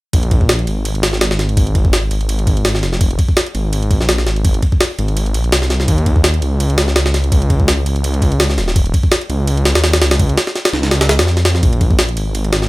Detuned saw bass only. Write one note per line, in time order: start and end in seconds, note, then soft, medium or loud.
0.13 0.66 A#1 loud
0.67 2.10 G#1 loud
2.11 2.84 G#1 medium
2.83 3.18 F1 loud
3.55 3.99 G#1 medium
4.00 4.28 A#1 medium
4.26 4.61 G#1 medium
4.99 5.36 G#1 medium
5.34 5.51 A#1 loud
5.52 5.87 C2 medium
5.88 6.41 D#2 loud
6.42 7.85 C#2 medium
7.86 8.59 C#2 medium
8.58 8.92 D#1 loud
9.30 9.74 C#2 medium
9.75 10.03 D#2 medium
10.01 10.36 C#2 loud
10.73 11.20 C#2 medium
11.19 11.62 F2 medium
11.63 12.16 A#1 loud
12.17 12.69 G#1 loud